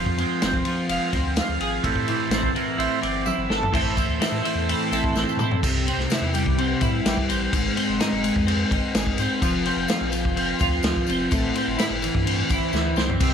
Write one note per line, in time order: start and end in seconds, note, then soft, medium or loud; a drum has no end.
0.00 0.64 F3 medium
0.00 0.17 C4 medium
0.00 0.87 C5 loud
0.06 0.25 F2 medium
0.06 kick medium
0.18 0.51 F3 medium
0.18 0.51 G#3 soft
0.18 0.42 C4 medium
0.18 ride medium
0.22 0.52 C4 medium
0.42 0.61 F1 loud
0.42 1.12 C4 medium
0.42 snare loud
0.42 ride medium
0.42 tambourine medium
0.54 kick medium
0.65 1.84 F3 medium
0.65 ride medium
0.89 0.99 F1 medium
0.89 1.12 F3 soft
0.89 1.12 G#3 soft
0.89 1.36 F4 medium
0.89 ride loud
0.93 1.13 C4 medium
1.12 1.41 D2 medium
1.12 2.32 C4 medium
1.12 kick medium
1.12 snare soft
1.12 ride medium
1.36 1.84 F4 medium
1.36 snare loud
1.36 ride loud
1.36 tambourine medium
1.41 1.83 F4 medium
1.49 1.58 D2 medium
1.60 1.79 G#1 medium
1.60 1.84 G#4 medium
1.60 ride medium
1.83 1.94 A1 medium
1.83 3.02 A2 medium
1.83 2.51 E3 medium
1.83 2.51 A3 medium
1.83 2.52 C4 medium
1.83 2.34 G4 medium
1.83 kick loud
1.83 ride medium
1.96 2.15 A2 medium
1.96 kick medium
2.08 2.54 E3 medium
2.08 ride medium
2.30 2.49 A1 loud
2.30 3.01 C4 medium
2.30 snare loud
2.30 ride medium
2.30 tambourine medium
2.34 2.57 A4 medium
2.43 kick medium
2.55 3.72 E3 medium
2.55 2.78 A#4 medium
2.55 ride medium
2.77 2.88 A1 medium
2.77 2.99 E3 soft
2.77 3.00 A3 soft
2.77 3.00 C4 medium
2.77 3.24 E4 medium
2.77 3.01 C5 loud
2.77 ride medium
3.02 3.31 G1 medium
3.02 3.73 C4 medium
3.02 3.27 D5 loud
3.02 ride medium
3.26 3.73 E4 medium
3.26 3.70 E5 medium
3.26 high tom medium
3.26 tambourine medium
3.37 3.47 G1 medium
3.49 3.68 G1 medium
3.49 3.74 A4 medium
3.49 snare medium
3.63 floor tom medium
3.72 4.02 A1 loud
3.72 4.20 A2 medium
3.72 4.19 E3 medium
3.72 3.97 C4 loud
3.72 3.96 E4 medium
3.72 5.61 A4 medium
3.72 3.95 A4 medium
3.72 5.61 C5 medium
3.72 5.61 E5 medium
3.72 kick loud
3.72 crash loud
3.96 4.20 C4 medium
3.96 4.20 E4 medium
3.96 4.21 A4 medium
3.96 kick medium
3.96 ride medium
3.96 tambourine medium
4.09 4.18 D2 medium
4.09 tambourine soft
4.20 4.43 E3 medium
4.20 4.43 C4 medium
4.20 4.42 E4 medium
4.20 4.42 A4 medium
4.20 snare loud
4.20 ride medium
4.20 tambourine medium
4.32 4.42 A2 medium
4.32 snare soft
4.43 4.92 A2 medium
4.43 4.66 E3 medium
4.43 4.68 C4 medium
4.43 4.68 E4 medium
4.43 4.69 A4 medium
4.43 ride medium
4.55 4.75 E2 medium
4.67 4.92 E3 medium
4.67 4.91 C4 medium
4.67 4.91 E4 medium
4.67 4.90 A4 medium
4.67 ride loud
4.81 tambourine soft
4.91 5.01 A1 medium
4.91 5.40 A2 medium
4.91 5.14 E3 medium
4.91 5.15 C4 medium
4.91 5.15 E4 medium
4.91 5.17 A4 loud
4.91 ride medium
4.91 tambourine medium
5.04 kick medium
5.15 5.25 A1 loud
5.15 5.61 E3 medium
5.15 5.41 C4 medium
5.15 5.40 E4 medium
5.15 5.38 A4 medium
5.15 snare medium
5.15 tambourine medium
5.29 tambourine medium
5.37 5.57 A2 medium
5.37 5.62 E4 medium
5.37 5.62 A4 medium
5.37 mid tom medium
5.37 tambourine medium
5.42 5.63 C4 medium
5.51 floor tom medium
5.63 5.92 C2 loud
5.63 6.82 C3 medium
5.63 kick loud
5.63 crash loud
5.63 tambourine medium
5.86 6.58 C4 medium
5.86 ride medium
5.86 tambourine soft
5.97 6.07 C2 loud
5.97 snare soft
6.10 6.80 E4 medium
6.10 snare loud
6.10 ride loud
6.10 tambourine loud
6.21 6.48 E2 loud
6.34 7.04 G3 medium
6.34 ride medium
6.34 tambourine medium
6.46 6.75 C2 medium
6.46 kick medium
6.58 7.29 C4 medium
6.58 ride loud
6.81 7.00 A2 loud
6.81 7.53 E4 medium
6.81 kick medium
6.81 ride medium
6.81 tambourine medium
7.05 7.15 A1 loud
7.05 7.53 G3 medium
7.05 snare loud
7.05 ride loud
7.05 tambourine medium
7.17 kick medium
7.29 7.48 A1 loud
7.29 7.76 C4 medium
7.29 ride medium
7.29 tambourine medium
7.53 7.72 G#1 loud
7.53 8.72 G#2 medium
7.53 kick loud
7.53 ride loud
7.53 tambourine medium
7.77 8.46 C4 medium
7.77 ride medium
7.77 tambourine soft
7.89 7.98 F1 loud
8.00 8.69 D#4 medium
8.00 snare loud
8.00 ride loud
8.00 tambourine loud
8.12 8.31 F1 medium
8.24 8.94 G#3 medium
8.24 ride medium
8.24 tambourine medium
8.36 8.65 F2 loud
8.36 kick medium
8.47 9.19 C4 medium
8.47 ride loud
8.71 8.81 G#1 medium
8.71 9.42 D#4 medium
8.71 kick medium
8.71 ride medium
8.95 9.14 G#1 loud
8.95 9.42 G#3 medium
8.95 snare loud
8.95 ride loud
8.95 tambourine loud
9.07 kick medium
9.18 9.28 G#2 loud
9.18 9.66 C4 medium
9.18 ride medium
9.18 tambourine medium
9.42 9.71 F1 loud
9.42 10.11 F3 medium
9.42 kick loud
9.42 ride loud
9.42 tambourine medium
9.65 10.36 C4 medium
9.65 ride medium
9.65 tambourine soft
9.76 9.86 F1 loud
9.88 10.60 F4 medium
9.88 snare loud
9.88 ride loud
9.88 tambourine loud
10.01 10.26 A#1 loud
10.12 10.83 F3 medium
10.12 ride medium
10.12 tambourine medium
10.25 10.54 F1 loud
10.25 kick medium
10.36 11.08 C4 medium
10.36 ride loud
10.59 10.80 D2 loud
10.59 11.32 F4 medium
10.59 kick medium
10.59 ride medium
10.59 tambourine medium
10.83 10.93 D2 loud
10.83 11.32 F3 medium
10.83 snare loud
10.83 ride loud
10.83 tambourine loud
10.96 kick medium
11.07 11.27 F1 medium
11.07 11.56 C4 medium
11.07 ride medium
11.07 tambourine medium
11.31 11.51 A1 loud
11.31 12.50 A2 medium
11.31 kick loud
11.31 ride loud
11.31 tambourine medium
11.54 12.25 C4 medium
11.54 ride medium
11.54 tambourine soft
11.67 11.77 G1 loud
11.78 12.50 E4 medium
11.78 snare loud
11.78 ride loud
11.78 tambourine loud
11.90 12.09 G1 medium
12.02 12.72 E3 medium
12.02 ride medium
12.02 tambourine medium
12.15 12.43 G2 loud
12.15 kick medium
12.25 12.97 C4 medium
12.25 ride loud
12.49 12.59 A1 medium
12.49 13.22 E4 medium
12.49 kick medium
12.49 ride medium
12.49 tambourine medium
12.73 12.94 D2 medium
12.73 13.21 E3 medium
12.73 snare medium
12.73 tambourine medium
12.96 13.18 C2 medium
12.96 13.34 C4 medium
12.96 snare loud
12.96 tambourine medium
13.10 floor tom medium
13.20 13.34 C2 loud
13.20 13.34 C3 medium
13.20 13.34 G4 medium
13.20 13.34 C5 medium
13.20 13.34 E5 medium
13.20 kick loud
13.20 ride loud
13.20 tambourine medium
13.20 crash loud